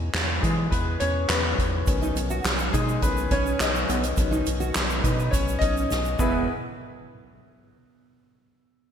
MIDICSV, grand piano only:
0, 0, Header, 1, 2, 480
1, 0, Start_track
1, 0, Tempo, 576424
1, 1561, Time_signature, 4, 2, 24, 8
1, 7425, End_track
2, 0, Start_track
2, 0, Title_t, "Grand piano"
2, 0, Program_c, 0, 0
2, 0, Control_c, 0, 64, 127
2, 0, Note_on_c, 0, 52, 51
2, 0, Note_on_c, 0, 56, 56
2, 0, Note_on_c, 0, 59, 58
2, 0, Note_on_c, 0, 61, 67
2, 0, Note_on_c, 0, 63, 62
2, 0, Note_on_c, 0, 68, 60
2, 0, Note_on_c, 0, 71, 68
2, 0, Note_on_c, 0, 73, 82
2, 0, Note_on_c, 0, 75, 83
2, 323, Note_off_c, 0, 52, 0
2, 352, Note_off_c, 0, 68, 0
2, 352, Note_on_c, 0, 68, 69
2, 354, Note_on_c, 0, 52, 49
2, 362, Note_off_c, 0, 56, 0
2, 362, Note_on_c, 0, 56, 58
2, 367, Note_off_c, 0, 59, 0
2, 367, Note_on_c, 0, 59, 51
2, 587, Note_off_c, 0, 56, 0
2, 589, Note_off_c, 0, 71, 0
2, 589, Note_on_c, 0, 71, 80
2, 598, Note_off_c, 0, 59, 0
2, 604, Note_off_c, 0, 68, 0
2, 611, Note_on_c, 0, 59, 64
2, 676, Note_off_c, 0, 52, 0
2, 818, Note_off_c, 0, 71, 0
2, 829, Note_off_c, 0, 59, 0
2, 832, Note_off_c, 0, 73, 0
2, 832, Note_on_c, 0, 73, 92
2, 847, Note_off_c, 0, 61, 0
2, 847, Note_on_c, 0, 61, 70
2, 1067, Note_off_c, 0, 61, 0
2, 1068, Note_on_c, 0, 71, 83
2, 1081, Note_on_c, 0, 59, 56
2, 1084, Note_off_c, 0, 73, 0
2, 1408, Note_off_c, 0, 71, 0
2, 1416, Note_off_c, 0, 59, 0
2, 1550, Note_on_c, 0, 51, 52
2, 1558, Note_on_c, 0, 59, 50
2, 1564, Note_on_c, 0, 61, 54
2, 1570, Control_c, 0, 64, 0
2, 1572, Note_off_c, 0, 63, 0
2, 1577, Note_off_c, 0, 75, 0
2, 1705, Control_c, 0, 64, 127
2, 1874, Note_off_c, 0, 51, 0
2, 1878, Note_off_c, 0, 59, 0
2, 1881, Note_off_c, 0, 61, 0
2, 2268, Note_on_c, 0, 68, 75
2, 2283, Note_on_c, 0, 56, 56
2, 2505, Note_off_c, 0, 56, 0
2, 2516, Note_on_c, 0, 51, 49
2, 2517, Note_on_c, 0, 59, 66
2, 2518, Note_on_c, 0, 71, 90
2, 2522, Note_off_c, 0, 68, 0
2, 2523, Note_on_c, 0, 61, 52
2, 2733, Note_off_c, 0, 51, 0
2, 2738, Note_off_c, 0, 61, 0
2, 2747, Note_off_c, 0, 59, 0
2, 2762, Note_on_c, 0, 73, 90
2, 2766, Note_off_c, 0, 71, 0
2, 2768, Note_on_c, 0, 61, 69
2, 2987, Note_off_c, 0, 61, 0
2, 3008, Note_off_c, 0, 73, 0
2, 3008, Note_on_c, 0, 75, 92
2, 3013, Note_on_c, 0, 63, 72
2, 3339, Note_off_c, 0, 75, 0
2, 3342, Note_off_c, 0, 63, 0
2, 3479, Note_on_c, 0, 51, 52
2, 3483, Note_on_c, 0, 59, 54
2, 3492, Note_on_c, 0, 61, 58
2, 3798, Note_off_c, 0, 51, 0
2, 3801, Note_off_c, 0, 59, 0
2, 3805, Note_off_c, 0, 61, 0
2, 4185, Note_on_c, 0, 71, 71
2, 4198, Note_on_c, 0, 59, 56
2, 4421, Note_on_c, 0, 73, 83
2, 4422, Note_off_c, 0, 59, 0
2, 4439, Note_off_c, 0, 71, 0
2, 4448, Note_on_c, 0, 61, 69
2, 4653, Note_on_c, 0, 75, 96
2, 4667, Note_off_c, 0, 61, 0
2, 4678, Note_off_c, 0, 73, 0
2, 4680, Note_on_c, 0, 63, 74
2, 5113, Note_off_c, 0, 75, 0
2, 5126, Note_off_c, 0, 63, 0
2, 5156, Note_on_c, 0, 68, 79
2, 5158, Note_on_c, 0, 40, 73
2, 5158, Note_on_c, 0, 64, 81
2, 5159, Note_on_c, 0, 71, 98
2, 5170, Control_c, 0, 64, 0
2, 5262, Control_c, 0, 64, 127
2, 5381, Note_off_c, 0, 68, 0
2, 5382, Note_off_c, 0, 40, 0
2, 5382, Note_off_c, 0, 64, 0
2, 5382, Note_off_c, 0, 71, 0
2, 5411, Control_c, 0, 64, 0
2, 7425, End_track
0, 0, End_of_file